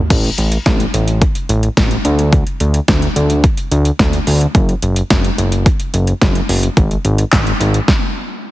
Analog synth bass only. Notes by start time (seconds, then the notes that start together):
0.10 A1
0.38 A1
0.66 A1
0.94 A1
1.49 A1
1.77 A1
2.05 D2
2.60 D2
2.88 D2
3.16 D2
3.71 D2
3.99 D2
4.27 D2
4.55 F#1
4.83 F#1
5.10 F#1
5.38 F#1
5.94 F#1
6.22 F#1
6.49 F#1
6.77 G#1
7.05 G#1
7.33 G#1
7.60 G#1